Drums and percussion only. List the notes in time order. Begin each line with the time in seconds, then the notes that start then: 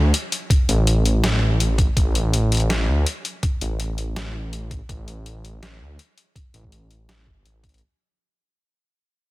0.14 closed hi-hat
0.32 closed hi-hat
0.50 kick, closed hi-hat
0.69 closed hi-hat
0.87 closed hi-hat
1.05 closed hi-hat
1.24 snare, closed hi-hat
1.60 closed hi-hat
1.78 kick, closed hi-hat
1.97 kick, closed hi-hat
2.15 closed hi-hat
2.34 closed hi-hat
2.52 closed hi-hat
2.55 closed hi-hat
2.57 closed hi-hat
2.60 closed hi-hat
2.70 snare, closed hi-hat
3.06 closed hi-hat
3.25 closed hi-hat
3.43 kick, closed hi-hat
3.61 closed hi-hat
3.80 closed hi-hat
3.98 closed hi-hat
4.16 snare, closed hi-hat
4.53 closed hi-hat
4.71 kick, closed hi-hat
4.89 kick, closed hi-hat
5.08 closed hi-hat
5.26 closed hi-hat
5.45 closed hi-hat
5.63 snare, closed hi-hat
5.99 closed hi-hat
6.18 closed hi-hat
6.36 kick, closed hi-hat
6.54 closed hi-hat
6.64 kick
6.72 closed hi-hat
6.91 closed hi-hat
7.09 snare, closed hi-hat
7.27 kick
7.46 closed hi-hat
7.64 kick, closed hi-hat
7.69 closed hi-hat
7.74 closed hi-hat
7.78 closed hi-hat